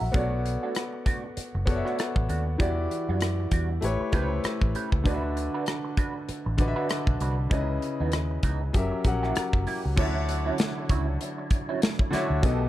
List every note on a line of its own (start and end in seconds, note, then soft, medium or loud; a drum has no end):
0.00 0.12 A#1 medium
0.00 0.16 F#3 medium
0.00 0.12 F#4 medium
0.00 0.16 A#4 medium
0.00 0.14 C#5 medium
0.00 0.16 E5 medium
0.00 0.16 F#5 medium
0.00 0.16 A#5 medium
0.00 0.16 B5 medium
0.00 muted clean electric guitar stroke soft
0.12 0.56 B1 medium
0.12 0.32 A3 medium
0.12 1.21 B3 medium
0.12 0.32 D4 medium
0.12 1.21 F#4 medium
0.12 0.31 F#4 medium
0.12 1.22 A4 medium
0.12 1.23 C#5 medium
0.12 kick loud
0.12 closed hi-hat medium
0.16 1.23 D5 medium
0.33 muted clean electric guitar stroke soft
0.45 muted clean electric guitar stroke soft
0.45 closed hi-hat medium
0.63 0.73 A3 soft
0.63 0.73 D4 soft
0.63 0.73 F#4 medium
0.75 muted clean electric guitar stroke soft
0.75 cross-stick loud
0.75 closed hi-hat medium
0.94 muted clean electric guitar stroke soft
1.06 1.24 A3 medium
1.06 1.24 D4 medium
1.06 1.23 F#4 medium
1.06 kick medium
1.06 closed hi-hat medium
1.24 muted clean electric guitar stroke soft
1.37 muted clean electric guitar stroke soft
1.37 muted fingered electric bass stroke soft
1.37 closed hi-hat medium
1.55 1.81 F#1 medium
1.55 muted clean electric guitar stroke soft
1.66 2.48 B3 medium
1.66 2.49 F#4 medium
1.66 2.49 A4 medium
1.66 2.49 C#5 medium
1.66 1.76 D5 medium
1.66 kick medium
1.66 closed hi-hat medium
1.76 2.53 E5 medium
1.85 1.97 A3 medium
1.85 1.98 D4 medium
1.85 1.98 F#4 medium
1.85 cross-stick soft
1.99 muted clean electric guitar stroke soft
1.99 cross-stick loud
1.99 closed hi-hat medium
2.16 2.27 A1 medium
2.16 kick medium
2.29 2.55 D#2 medium
2.29 2.43 A3 soft
2.29 2.43 D4 medium
2.29 2.43 F#4 medium
2.29 closed hi-hat medium
2.47 muted clean electric guitar stroke soft
2.58 2.86 E2 medium
2.58 3.67 E3 medium
2.58 2.77 G3 medium
2.58 2.78 D4 medium
2.58 3.68 E4 medium
2.58 3.68 F#4 medium
2.58 2.77 F#4 medium
2.58 3.69 G4 medium
2.58 3.69 D5 medium
2.58 kick loud
2.58 closed hi-hat medium
2.78 muted clean electric guitar stroke soft
2.91 muted clean electric guitar stroke soft
2.91 closed hi-hat medium
3.09 3.46 F#2 medium
3.09 3.19 G3 soft
3.09 3.19 D4 soft
3.09 3.19 F#4 medium
3.21 muted clean electric guitar stroke soft
3.21 cross-stick loud
3.21 closed hi-hat medium
3.40 muted clean electric guitar stroke soft
3.51 3.78 E2 medium
3.51 3.70 G3 medium
3.51 3.70 D4 medium
3.51 3.70 F#4 medium
3.51 kick medium
3.51 closed hi-hat medium
3.71 muted clean electric guitar stroke soft
3.81 3.98 A1 medium
3.81 4.09 A3 medium
3.81 4.09 E4 medium
3.81 4.10 G4 medium
3.81 4.11 B4 medium
3.81 4.11 C#5 medium
3.81 muted clean electric guitar stroke soft
3.81 closed hi-hat medium
4.01 muted clean electric guitar stroke soft
4.12 4.40 C#2 medium
4.12 4.94 A3 medium
4.12 4.31 C#4 medium
4.12 4.95 E4 medium
4.12 4.30 G4 medium
4.12 4.95 G4 medium
4.12 4.29 B4 medium
4.12 4.96 B4 medium
4.12 4.22 C5 medium
4.12 kick medium
4.12 closed hi-hat medium
4.22 4.99 C#5 medium
4.31 muted clean electric guitar stroke soft
4.44 muted clean electric guitar stroke soft
4.44 muted fingered electric bass stroke soft
4.44 cross-stick loud
4.44 closed hi-hat medium
4.61 4.73 A1 medium
4.61 kick medium
4.75 4.89 C#4 soft
4.75 4.89 G4 medium
4.75 4.89 B4 medium
4.75 closed hi-hat medium
4.92 5.04 C#2 medium
4.92 muted clean electric guitar stroke soft
4.92 kick medium
5.04 5.47 D2 medium
5.04 6.13 D3 medium
5.04 6.13 D4 medium
5.04 5.24 D4 medium
5.04 6.14 F#4 medium
5.04 5.23 F#4 medium
5.04 6.14 B4 medium
5.04 5.22 B4 medium
5.04 kick loud
5.04 closed hi-hat medium
5.08 5.14 D#5 medium
5.14 6.18 E5 medium
5.24 muted clean electric guitar stroke soft
5.36 muted clean electric guitar stroke soft
5.36 closed hi-hat medium
5.54 5.65 D4 soft
5.54 5.65 F#4 soft
5.54 5.64 B4 medium
5.66 muted clean electric guitar stroke soft
5.66 cross-stick loud
5.66 closed hi-hat medium
5.85 muted clean electric guitar stroke soft
5.97 6.15 D4 medium
5.97 6.15 F#4 medium
5.97 6.14 B4 medium
5.97 kick medium
5.97 closed hi-hat medium
6.15 muted clean electric guitar stroke soft
6.28 muted clean electric guitar stroke soft
6.28 muted fingered electric bass stroke soft
6.28 closed hi-hat medium
6.46 6.73 A1 medium
6.46 muted clean electric guitar stroke soft
6.57 7.40 D3 medium
6.57 7.41 D4 medium
6.57 7.41 F#4 medium
6.57 7.42 B4 medium
6.57 6.68 D#5 medium
6.57 kick medium
6.57 closed hi-hat medium
6.68 7.45 E5 medium
6.76 6.89 D4 medium
6.76 6.89 F#4 medium
6.76 6.89 B4 medium
6.89 muted clean electric guitar stroke soft
6.89 cross-stick loud
6.89 closed hi-hat medium
7.07 7.19 B1 medium
7.07 kick medium
7.20 7.47 C2 medium
7.20 7.35 D4 medium
7.20 7.35 F#4 medium
7.20 7.35 B4 medium
7.20 closed hi-hat medium
7.38 muted clean electric guitar stroke soft
7.50 7.78 C#2 medium
7.50 8.59 C#3 medium
7.50 7.69 E3 medium
7.50 7.69 B3 medium
7.50 8.59 C#4 medium
7.50 7.68 D#4 medium
7.50 8.60 E4 medium
7.50 8.60 B4 medium
7.50 8.61 D#5 medium
7.50 kick loud
7.50 closed hi-hat medium
7.70 muted clean electric guitar stroke soft
7.82 muted clean electric guitar stroke soft
7.82 closed hi-hat medium
8.00 8.38 D#2 medium
8.00 8.11 E3 soft
8.00 8.11 B3 soft
8.00 8.10 D#4 medium
8.12 muted clean electric guitar stroke soft
8.12 cross-stick loud
8.12 closed hi-hat medium
8.31 muted clean electric guitar stroke soft
8.43 8.70 C#2 medium
8.43 8.61 E3 medium
8.43 8.61 B3 medium
8.43 8.61 D#4 medium
8.43 kick medium
8.43 closed hi-hat medium
8.62 muted clean electric guitar stroke soft
8.73 8.90 F#1 medium
8.73 9.01 F#3 medium
8.73 9.01 C#4 medium
8.73 9.02 G4 medium
8.73 9.02 A#4 medium
8.73 9.03 E5 medium
8.73 muted clean electric guitar stroke soft
8.73 kick medium
8.73 closed hi-hat medium
8.92 muted clean electric guitar stroke soft
9.04 9.31 A#1 medium
9.04 9.86 F#3 medium
9.04 9.87 C#4 medium
9.04 9.87 G4 medium
9.04 9.88 A#4 medium
9.04 9.88 F#5 medium
9.04 kick medium
9.04 closed hi-hat medium
9.23 9.35 A#3 medium
9.23 9.36 E4 medium
9.23 9.36 G4 medium
9.23 cross-stick soft
9.36 muted clean electric guitar stroke soft
9.36 muted fingered electric bass stroke soft
9.36 cross-stick loud
9.36 closed hi-hat medium
9.53 9.65 F#1 medium
9.53 kick medium
9.67 9.81 A#3 soft
9.67 9.81 E4 soft
9.67 9.81 G4 medium
9.67 cross-stick soft
9.67 open hi-hat medium
9.85 9.96 C#2 medium
9.85 muted clean electric guitar stroke soft
9.96 10.50 D2 medium
9.96 11.05 D3 medium
9.96 10.15 F#3 medium
9.96 12.41 F#3 medium
9.96 10.15 C#4 medium
9.96 11.05 D4 medium
9.96 12.42 D4 medium
9.96 10.05 E4 medium
9.96 10.14 E4 medium
9.96 12.41 E4 medium
9.96 11.06 C#5 medium
9.96 12.42 C#5 medium
9.96 11.07 E5 loud
9.96 kick loud
9.96 crash loud
10.04 11.09 F#4 medium
10.16 muted clean electric guitar stroke soft
10.29 muted clean electric guitar stroke soft
10.29 closed hi-hat medium
10.46 10.56 F#3 soft
10.46 10.56 C#4 soft
10.46 10.56 E4 medium
10.58 muted clean electric guitar stroke soft
10.58 snare loud
10.58 closed hi-hat medium
10.78 muted clean electric guitar stroke soft
10.89 11.16 C#2 loud
10.89 11.07 F#3 medium
10.89 11.08 C#4 medium
10.89 11.07 E4 medium
10.89 kick medium
10.89 closed hi-hat medium
11.08 muted clean electric guitar stroke soft
11.21 muted clean electric guitar stroke soft
11.21 closed hi-hat medium
11.38 muted clean electric guitar stroke soft
11.51 kick medium
11.51 closed hi-hat medium
11.69 11.81 F#3 medium
11.69 11.81 C#4 medium
11.69 11.82 E4 medium
11.82 muted clean electric guitar stroke soft
11.82 snare loud
11.82 closed hi-hat medium
11.99 kick medium
12.11 12.38 D3 medium
12.11 12.26 F#3 medium
12.11 12.26 C#4 medium
12.11 12.39 D4 medium
12.11 12.27 E4 medium
12.11 12.39 F#4 medium
12.11 12.40 C#5 medium
12.11 muted fingered electric bass stroke soft
12.11 snare soft
12.11 closed hi-hat medium
12.15 12.41 E5 medium
12.30 12.41 D2 medium
12.30 muted clean electric guitar stroke soft
12.42 12.69 B1 loud
12.42 12.69 B2 medium
12.42 12.69 D#3 medium
12.42 12.69 A3 medium
12.42 12.69 B3 medium
12.42 12.60 D#4 medium
12.42 12.60 G4 medium
12.42 12.69 G4 medium
12.42 12.59 A4 medium
12.42 12.69 A4 medium
12.42 12.69 D#5 medium
12.42 kick loud
12.42 closed hi-hat medium
12.60 muted clean electric guitar stroke soft